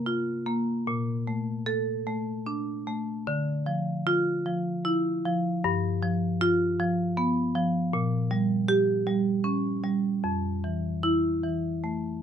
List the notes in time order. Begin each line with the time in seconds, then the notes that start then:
Already playing: C3 A#3
0.06 F4
0.46 A#3
0.87 A#2
1.27 A3
1.66 A4
2.07 A3
2.46 D4
2.87 A3
3.27 D3
3.66 F3
4.07 F4
4.46 F3
4.85 E4
5.25 F3
5.64 G2
6.03 F3
6.41 F4
6.80 F3
7.17 B3
7.55 F3
7.93 A#2
8.31 G3
8.68 G4
9.07 G3
9.44 C#4
9.84 G3
10.24 F2
10.64 E3
11.03 E4
11.44 E3
11.84 A3